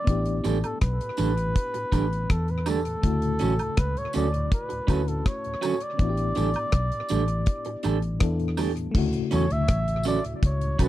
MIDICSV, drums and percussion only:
0, 0, Header, 1, 2, 480
1, 0, Start_track
1, 0, Key_signature, 2, "major"
1, 0, Tempo, 738916
1, 49, Time_signature, 4, 2, 24, 8
1, 7070, End_track
2, 0, Start_track
2, 0, Title_t, "Drums"
2, 47, Note_on_c, 9, 42, 78
2, 48, Note_on_c, 9, 36, 103
2, 111, Note_off_c, 9, 42, 0
2, 113, Note_off_c, 9, 36, 0
2, 166, Note_on_c, 9, 42, 51
2, 231, Note_off_c, 9, 42, 0
2, 288, Note_on_c, 9, 42, 58
2, 289, Note_on_c, 9, 54, 46
2, 353, Note_off_c, 9, 42, 0
2, 354, Note_off_c, 9, 54, 0
2, 414, Note_on_c, 9, 42, 54
2, 415, Note_on_c, 9, 76, 68
2, 479, Note_off_c, 9, 42, 0
2, 480, Note_off_c, 9, 76, 0
2, 528, Note_on_c, 9, 42, 81
2, 530, Note_on_c, 9, 37, 87
2, 531, Note_on_c, 9, 36, 105
2, 593, Note_off_c, 9, 42, 0
2, 595, Note_off_c, 9, 37, 0
2, 596, Note_off_c, 9, 36, 0
2, 655, Note_on_c, 9, 42, 49
2, 720, Note_off_c, 9, 42, 0
2, 760, Note_on_c, 9, 54, 56
2, 768, Note_on_c, 9, 42, 72
2, 825, Note_off_c, 9, 54, 0
2, 832, Note_off_c, 9, 42, 0
2, 893, Note_on_c, 9, 42, 52
2, 958, Note_off_c, 9, 42, 0
2, 1011, Note_on_c, 9, 36, 99
2, 1011, Note_on_c, 9, 42, 86
2, 1076, Note_off_c, 9, 36, 0
2, 1076, Note_off_c, 9, 42, 0
2, 1132, Note_on_c, 9, 42, 54
2, 1197, Note_off_c, 9, 42, 0
2, 1249, Note_on_c, 9, 36, 81
2, 1252, Note_on_c, 9, 42, 70
2, 1252, Note_on_c, 9, 54, 45
2, 1252, Note_on_c, 9, 76, 58
2, 1314, Note_off_c, 9, 36, 0
2, 1317, Note_off_c, 9, 42, 0
2, 1317, Note_off_c, 9, 54, 0
2, 1317, Note_off_c, 9, 76, 0
2, 1382, Note_on_c, 9, 42, 46
2, 1447, Note_off_c, 9, 42, 0
2, 1493, Note_on_c, 9, 36, 111
2, 1493, Note_on_c, 9, 37, 108
2, 1494, Note_on_c, 9, 42, 73
2, 1558, Note_off_c, 9, 36, 0
2, 1558, Note_off_c, 9, 37, 0
2, 1559, Note_off_c, 9, 42, 0
2, 1611, Note_on_c, 9, 42, 36
2, 1676, Note_off_c, 9, 42, 0
2, 1728, Note_on_c, 9, 54, 71
2, 1728, Note_on_c, 9, 76, 70
2, 1730, Note_on_c, 9, 42, 78
2, 1793, Note_off_c, 9, 54, 0
2, 1793, Note_off_c, 9, 76, 0
2, 1795, Note_off_c, 9, 42, 0
2, 1852, Note_on_c, 9, 42, 48
2, 1917, Note_off_c, 9, 42, 0
2, 1970, Note_on_c, 9, 42, 73
2, 1971, Note_on_c, 9, 36, 96
2, 2035, Note_off_c, 9, 42, 0
2, 2036, Note_off_c, 9, 36, 0
2, 2092, Note_on_c, 9, 42, 58
2, 2157, Note_off_c, 9, 42, 0
2, 2202, Note_on_c, 9, 42, 67
2, 2212, Note_on_c, 9, 54, 41
2, 2267, Note_off_c, 9, 42, 0
2, 2277, Note_off_c, 9, 54, 0
2, 2333, Note_on_c, 9, 42, 51
2, 2335, Note_on_c, 9, 76, 66
2, 2398, Note_off_c, 9, 42, 0
2, 2400, Note_off_c, 9, 76, 0
2, 2450, Note_on_c, 9, 42, 86
2, 2451, Note_on_c, 9, 37, 95
2, 2454, Note_on_c, 9, 36, 105
2, 2515, Note_off_c, 9, 42, 0
2, 2516, Note_off_c, 9, 37, 0
2, 2519, Note_off_c, 9, 36, 0
2, 2578, Note_on_c, 9, 42, 47
2, 2643, Note_off_c, 9, 42, 0
2, 2683, Note_on_c, 9, 54, 57
2, 2691, Note_on_c, 9, 42, 69
2, 2748, Note_off_c, 9, 54, 0
2, 2756, Note_off_c, 9, 42, 0
2, 2818, Note_on_c, 9, 42, 47
2, 2883, Note_off_c, 9, 42, 0
2, 2934, Note_on_c, 9, 36, 106
2, 2934, Note_on_c, 9, 42, 87
2, 2999, Note_off_c, 9, 36, 0
2, 2999, Note_off_c, 9, 42, 0
2, 3053, Note_on_c, 9, 42, 61
2, 3118, Note_off_c, 9, 42, 0
2, 3172, Note_on_c, 9, 36, 92
2, 3174, Note_on_c, 9, 42, 64
2, 3179, Note_on_c, 9, 54, 43
2, 3179, Note_on_c, 9, 76, 62
2, 3237, Note_off_c, 9, 36, 0
2, 3239, Note_off_c, 9, 42, 0
2, 3244, Note_off_c, 9, 54, 0
2, 3244, Note_off_c, 9, 76, 0
2, 3300, Note_on_c, 9, 42, 49
2, 3365, Note_off_c, 9, 42, 0
2, 3416, Note_on_c, 9, 36, 119
2, 3416, Note_on_c, 9, 37, 113
2, 3417, Note_on_c, 9, 42, 77
2, 3481, Note_off_c, 9, 36, 0
2, 3481, Note_off_c, 9, 37, 0
2, 3482, Note_off_c, 9, 42, 0
2, 3536, Note_on_c, 9, 42, 41
2, 3601, Note_off_c, 9, 42, 0
2, 3652, Note_on_c, 9, 37, 60
2, 3654, Note_on_c, 9, 42, 77
2, 3655, Note_on_c, 9, 54, 66
2, 3655, Note_on_c, 9, 76, 72
2, 3717, Note_off_c, 9, 37, 0
2, 3719, Note_off_c, 9, 42, 0
2, 3720, Note_off_c, 9, 54, 0
2, 3720, Note_off_c, 9, 76, 0
2, 3771, Note_on_c, 9, 42, 52
2, 3836, Note_off_c, 9, 42, 0
2, 3893, Note_on_c, 9, 36, 115
2, 3893, Note_on_c, 9, 42, 73
2, 3958, Note_off_c, 9, 36, 0
2, 3958, Note_off_c, 9, 42, 0
2, 4011, Note_on_c, 9, 42, 50
2, 4075, Note_off_c, 9, 42, 0
2, 4126, Note_on_c, 9, 42, 61
2, 4140, Note_on_c, 9, 54, 44
2, 4191, Note_off_c, 9, 42, 0
2, 4204, Note_off_c, 9, 54, 0
2, 4247, Note_on_c, 9, 42, 53
2, 4261, Note_on_c, 9, 76, 77
2, 4312, Note_off_c, 9, 42, 0
2, 4326, Note_off_c, 9, 76, 0
2, 4366, Note_on_c, 9, 42, 84
2, 4368, Note_on_c, 9, 37, 91
2, 4371, Note_on_c, 9, 36, 102
2, 4431, Note_off_c, 9, 42, 0
2, 4433, Note_off_c, 9, 37, 0
2, 4436, Note_off_c, 9, 36, 0
2, 4494, Note_on_c, 9, 42, 51
2, 4559, Note_off_c, 9, 42, 0
2, 4603, Note_on_c, 9, 54, 62
2, 4607, Note_on_c, 9, 42, 68
2, 4668, Note_off_c, 9, 54, 0
2, 4672, Note_off_c, 9, 42, 0
2, 4728, Note_on_c, 9, 42, 53
2, 4793, Note_off_c, 9, 42, 0
2, 4847, Note_on_c, 9, 42, 85
2, 4852, Note_on_c, 9, 36, 101
2, 4912, Note_off_c, 9, 42, 0
2, 4917, Note_off_c, 9, 36, 0
2, 4967, Note_on_c, 9, 42, 56
2, 5032, Note_off_c, 9, 42, 0
2, 5086, Note_on_c, 9, 42, 67
2, 5095, Note_on_c, 9, 54, 44
2, 5095, Note_on_c, 9, 76, 57
2, 5151, Note_off_c, 9, 42, 0
2, 5160, Note_off_c, 9, 54, 0
2, 5160, Note_off_c, 9, 76, 0
2, 5212, Note_on_c, 9, 42, 44
2, 5277, Note_off_c, 9, 42, 0
2, 5329, Note_on_c, 9, 37, 115
2, 5330, Note_on_c, 9, 42, 83
2, 5333, Note_on_c, 9, 36, 114
2, 5394, Note_off_c, 9, 37, 0
2, 5395, Note_off_c, 9, 42, 0
2, 5397, Note_off_c, 9, 36, 0
2, 5454, Note_on_c, 9, 42, 37
2, 5519, Note_off_c, 9, 42, 0
2, 5569, Note_on_c, 9, 54, 64
2, 5569, Note_on_c, 9, 76, 73
2, 5572, Note_on_c, 9, 46, 76
2, 5634, Note_off_c, 9, 54, 0
2, 5634, Note_off_c, 9, 76, 0
2, 5637, Note_off_c, 9, 46, 0
2, 5695, Note_on_c, 9, 42, 47
2, 5760, Note_off_c, 9, 42, 0
2, 5812, Note_on_c, 9, 36, 116
2, 5814, Note_on_c, 9, 49, 112
2, 5877, Note_off_c, 9, 36, 0
2, 5879, Note_off_c, 9, 49, 0
2, 5930, Note_on_c, 9, 42, 58
2, 5995, Note_off_c, 9, 42, 0
2, 6047, Note_on_c, 9, 42, 67
2, 6053, Note_on_c, 9, 54, 47
2, 6112, Note_off_c, 9, 42, 0
2, 6118, Note_off_c, 9, 54, 0
2, 6174, Note_on_c, 9, 42, 54
2, 6239, Note_off_c, 9, 42, 0
2, 6290, Note_on_c, 9, 42, 88
2, 6291, Note_on_c, 9, 37, 91
2, 6293, Note_on_c, 9, 36, 107
2, 6355, Note_off_c, 9, 42, 0
2, 6356, Note_off_c, 9, 37, 0
2, 6358, Note_off_c, 9, 36, 0
2, 6417, Note_on_c, 9, 42, 58
2, 6482, Note_off_c, 9, 42, 0
2, 6518, Note_on_c, 9, 54, 68
2, 6529, Note_on_c, 9, 42, 77
2, 6583, Note_off_c, 9, 54, 0
2, 6594, Note_off_c, 9, 42, 0
2, 6655, Note_on_c, 9, 42, 51
2, 6720, Note_off_c, 9, 42, 0
2, 6773, Note_on_c, 9, 36, 127
2, 6775, Note_on_c, 9, 42, 85
2, 6838, Note_off_c, 9, 36, 0
2, 6840, Note_off_c, 9, 42, 0
2, 6895, Note_on_c, 9, 42, 61
2, 6960, Note_off_c, 9, 42, 0
2, 7011, Note_on_c, 9, 36, 93
2, 7011, Note_on_c, 9, 54, 43
2, 7011, Note_on_c, 9, 76, 73
2, 7014, Note_on_c, 9, 42, 85
2, 7070, Note_off_c, 9, 36, 0
2, 7070, Note_off_c, 9, 42, 0
2, 7070, Note_off_c, 9, 54, 0
2, 7070, Note_off_c, 9, 76, 0
2, 7070, End_track
0, 0, End_of_file